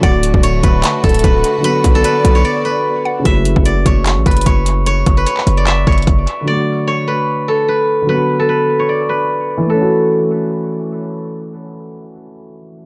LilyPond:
<<
  \new Staff \with { instrumentName = "Synth pluck" } { \time 4/4 \key fis \minor \tempo 4 = 149 fis''2 a''2 | b''2 r4. fis''8 | r1 | r1 |
r1 | r1 | r1 | r1 | }
  \new Staff \with { instrumentName = "Guzheng" } { \time 4/4 \key fis \minor d''4 cis''8 b'4 a'8 b'4 | b'8. a'16 b'8. cis''16 d''8 b'4. | e''4 d''8 cis''4 b'8 cis''4 | cis''8. b'16 cis''8. d''16 e''8 cis''4. |
d''4 cis''8 b'4 a'8 b'4 | b'8. a'16 b'8. cis''16 d''8 b'4. | a'2. r4 | r1 | }
  \new Staff \with { instrumentName = "String section" } { \time 4/4 \key fis \minor <d a fis'>1 | <b d''>1 | r1 | r1 |
r1 | r1 | r1 | r1 | }
  \new Staff \with { instrumentName = "Grand piano" } { \time 4/4 \key fis \minor <d fis a fis'>1 | <d fis b fis'>1 | <cis fis a e'>1~ | <cis fis a e'>1 |
<d fis a fis'>1 | <d fis b fis'>1 | <e a cis' fis'>1~ | <e a cis' fis'>1 | }
  \new Staff \with { instrumentName = "808-style bass" } { \clef bass \time 4/4 \key fis \minor d,,8. d,,8. d,,8 r8 d,,8 d,,8 r8 | r8 b,,8 r8 b,,8 r2 | fis,,8. fis,,8. fis,,8. a,,16 fis,,8 fis,,4~ | fis,,8 fis,,8 r8 fis,,4 fis,,8 fis,,8 r8 |
r1 | r1 | r1 | r1 | }
  \new DrumStaff \with { instrumentName = "Drums" } \drummode { \time 4/4 <hh bd>8 hh16 bd16 hh8 <hh bd>8 <hc hh>8 <hh bd>32 hh32 hh32 hh32 <hh bd>8 hh8 | hh8 <hh bd>8 hh8 hh8 r4 r4 | <hh bd>8 hh16 bd16 hh8 <hh bd>8 <hc hh>8 <hh bd>32 hh32 hh32 hh32 <hh bd>8 hh8 | hh8 <hh bd>8 hh16 hc16 hh8 <hc hh>8 <hh bd>32 hh32 hh32 hh32 <hh bd>8 hh8 |
r4 r4 r4 r4 | r4 r4 r4 r4 | r4 r4 r4 r4 | r4 r4 r4 r4 | }
>>